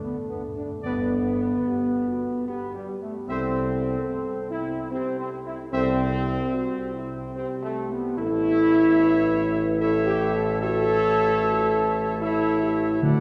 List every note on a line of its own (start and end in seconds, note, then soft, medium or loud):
0.00 0.16 B3 medium
0.00 1.62 A4 medium
0.30 0.42 B3 medium
0.57 0.69 D4 medium
0.83 1.52 G1 medium
0.83 2.44 B3 medium
0.83 1.14 B4 medium
0.83 1.14 D5 medium
1.66 2.04 G4 medium
2.08 2.45 F#4 medium
2.48 2.73 B3 medium
2.48 3.25 G4 medium
2.74 2.87 G3 medium
3.02 3.14 A3 medium
3.28 3.97 C2 medium
3.28 4.47 C4 loud
3.28 4.88 A4 medium
3.28 3.59 C5 medium
3.28 3.59 E5 medium
4.51 4.89 E4 medium
4.92 5.17 C4 medium
4.92 5.57 G4 medium
5.19 5.31 C4 medium
5.45 5.58 E4 medium
5.72 6.40 C2 medium
5.72 7.30 C4 loud
5.72 6.11 A4 medium
5.72 6.03 C5 medium
5.72 6.03 E5 medium
6.15 6.52 G4 medium
6.54 6.91 F#4 medium
6.94 7.32 E4 medium
7.35 7.47 C4 loud
7.35 8.18 G4 medium
7.63 7.88 A3 loud
7.90 8.18 B3 medium
8.17 12.99 A1 medium
8.17 9.75 E4 loud
8.17 8.95 A4 medium
8.17 9.76 C#5 medium
8.17 9.76 E5 medium
9.00 9.76 B4 medium
9.80 9.92 E4 loud
9.80 10.57 A4 medium
9.80 10.57 C#5 medium
9.80 10.57 E5 medium
10.06 10.31 G4 loud
10.34 10.59 A4 medium
10.60 10.99 F#4 medium
10.60 12.18 A4 loud
10.60 12.18 C#5 medium
10.60 12.18 E5 medium
11.01 11.41 E4 medium
11.41 11.70 F#4 medium
11.82 12.19 E4 medium
12.21 12.99 E4 loud
12.21 12.59 A4 medium
12.21 12.99 C#5 medium
12.21 12.99 E5 medium
12.61 13.00 G4 medium
13.03 13.20 D2 medium
13.03 13.20 D3 medium
13.03 13.20 A3 loud
13.03 13.20 F#4 medium
13.03 13.20 D5 medium
13.03 13.20 F#5 medium